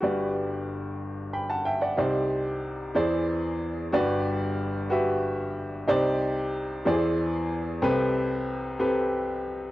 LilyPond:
<<
  \new Staff \with { instrumentName = "Upright piano" } { \time 6/8 \key g \major \tempo 4. = 62 << { r2 <g'' b''>16 <fis'' a''>16 <e'' g''>16 <d'' fis''>16~ | <d'' fis''>16 r2 r8. | r2. | r2. |
r2. | } \\ { <fis' g' b' d''>2. | <ees' g' c'' d''>4. <e' gis' bis' d''>4. | <fis' g' b' d''>4 r8 <fis' g' b' e''>4 r8 | <ees' g' c'' d''>4 r8 <e' g' gis' bis' d''>4 r8 |
<c' g' a' b'>4 r8 <c' g' a' b'>4 r8 | } >> }
  \new Staff \with { instrumentName = "Upright piano" } { \clef bass \time 6/8 \key g \major <g,, g,>2. | <c, c>4. <e, e>4. | <g,, g,>2. | <c, c>4. <e, e>4. |
<c, c>2. | }
>>